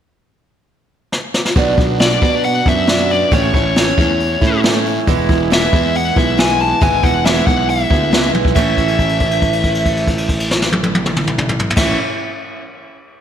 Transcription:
1.12 snare
1.34 snare
1.45 snare
1.56 B1 B2 F#3 B3 D4, kick, open hi-hat
1.77 B1 F#3 B3 D4, kick, open hi-hat
1.99 B2 F#3 B3 D4 D5, snare, open hi-hat
2.21 B2 F#3 B3 D4, kick, open hi-hat
2.43 F#5, open hi-hat
2.66 F#2 F#3 B3 D4 E5, kick, open hi-hat
2.87 B2 F#3 B3 D4, snare, open hi-hat
3.10 D5, open hi-hat
3.31 A1 A2 E3 A3 C#4 E4 C#5, kick, open hi-hat
3.54 A1 A3 C#4 E4, kick, open hi-hat
3.76 A2 E3 A3 C#4 E4, snare, open hi-hat
3.98 E2 A3 C#4 E4, kick, open hi-hat
4.20 open hi-hat
4.41 A2 A3 C#4 E4, kick, open hi-hat
4.64 E3 A3 C#4 E4, snare, open hi-hat
4.86 open hi-hat
5.07 E1 E3 G#3 B3 E4, kick, open hi-hat
5.29 E1 G#3 B3 E4, kick, open hi-hat
5.51 E3 G#3 B3 E4 E5, snare, open hi-hat
5.73 E2 G#3 B3 E4, kick, open hi-hat
5.95 F#5, open hi-hat
6.16 B1 G#3 B3 E4 E5, kick, open hi-hat
6.37 E3 G#3 B3 E4 G#5, snare, open hi-hat
6.60 A5, open hi-hat
6.81 G#1 E3 G#3 B3 E4 G#5, kick, open hi-hat
7.03 E1 G#3 B3 E4 F#5, kick, open hi-hat
7.25 E3 G#3 B3 E4 E5, snare, open hi-hat
7.46 B1 G#3 B3 E4 F#5, kick, open hi-hat
7.69 E5, open hi-hat
7.90 D2 G#3 B3 E4, kick, open hi-hat
8.11 C#2 E3 G#3 B3 E4, snare, open hi-hat
8.34 B1, high tom
8.45 kick
8.55 A1 A2 E3 A3 C#4 E4 E5, kick, crash
8.77 kick, crash
8.88 crash
8.99 kick, crash
9.09 crash
9.20 kick, crash
9.31 crash
9.42 kick, crash
9.53 crash
9.64 kick, crash
9.75 crash
9.86 kick, crash
9.97 crash
10.07 kick, crash
10.18 crash
10.29 kick, crash
10.40 crash
10.51 snare
10.62 snare
10.72 high tom
10.83 high tom
10.95 high tom
11.06 mid tom
11.16 mid tom
11.27 mid tom
11.38 mid tom
11.49 mid tom
11.59 floor tom
11.70 floor tom
11.76 A1 A2 E3 A3 C#4 E4 E5, kick, snare, crash

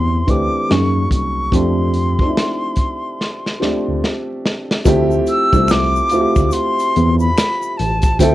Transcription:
Already playing: E2 E3 A3 C4 D4 G4 C6
0.27 D2 E3 A3 C4 D4 G4 D6, kick, closed hi-hat
0.69 F#2 F#3 A#3 C#4 D#4 G#4 C#6, snare, closed hi-hat
1.11 C2 C#6, kick, closed hi-hat
1.52 F2 F3 A3 C4 D4 G4 C6, kick, closed hi-hat
1.94 closed hi-hat
2.19 F3 A3 C4 D4 D#4, kick
2.29 E4
2.37 snare, closed hi-hat
2.76 kick, closed hi-hat
3.21 snare
3.46 snare
3.60 D2 F3 A3 C4 D4 G4, snare
3.88 D2
4.04 snare
4.46 snare
4.71 snare
4.85 D2 F3 A3 C4 E4 G4, kick, closed hi-hat, shaker
5.11 shaker
5.27 E6, closed hi-hat, shaker
5.53 C2 F3 A3 C4 E4 G4, kick, shaker
5.68 D6, finger snap, snare, shaker
5.73 closed hi-hat
5.96 shaker
6.09 D2 A3 C4 E4 F4, closed hi-hat, shaker
6.14 F#4
6.21 G4
6.36 D2, kick, shaker
6.49 C6 D6, closed hi-hat, shaker
6.79 closed hi-hat, shaker
6.96 E2, closed hi-hat
7.20 B5, shaker
7.38 finger snap, snare, closed hi-hat, shaker
7.62 shaker
7.77 A1 A5, closed hi-hat
8.02 kick, closed hi-hat, shaker
8.19 D2 F3 A3 C4 E4 A4 G5, kick, closed hi-hat, shaker

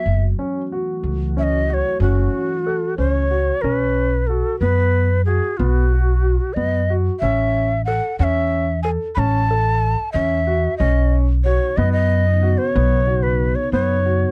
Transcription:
Already playing: E5
0.05 F#1 E3 A3 F#4
0.39 C#4
0.72 F#4
1.03 C#2
1.37 C#4 E5
1.43 D#5
1.69 F#4 D#5
1.74 C#5
2.00 F#1 C#4 F#4
2.67 A4
2.98 C#2 C#4 C5
3.09 C#5
3.31 F#4
3.62 B1 C#4 A#4
3.75 B4
4.27 F#4 A4
4.60 F#2 B3 B4
5.25 F#4 G#4
5.57 B1 B3 F4
5.69 F#4
5.93 F#4
6.53 F#2 B3 D#5
6.90 F#4
7.20 A1 C#4 E5
7.85 A4 F#5
8.19 E2 C#4 F#5
8.23 E5
8.83 A4 G#5
9.15 A1 C#4 B5
9.19 A5
9.51 A4
10.12 E2 C#4 E5
10.47 F#4
10.78 B1 C#3 B3 C#4 D#4 D#5
11.44 F#4 C#5
11.77 F#2 B3 D#5
11.93 D#5
12.43 F#4
12.58 C5
12.69 C#5
12.75 B1 B3
13.07 F#4
13.23 B4
13.55 C#5
13.72 F#2 B3 C#5
14.06 F#4

